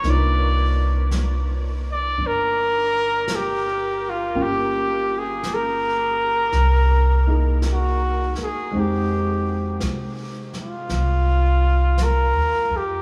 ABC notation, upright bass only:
X:1
M:4/4
L:1/8
Q:"Swing" 1/4=55
K:Cm
V:1 name="Upright bass" clef=bass
C,,4 G,,,4 | G,,,4 C,,3 z | F,,2 C,2 C,,2- (3C,, E,, F,, |]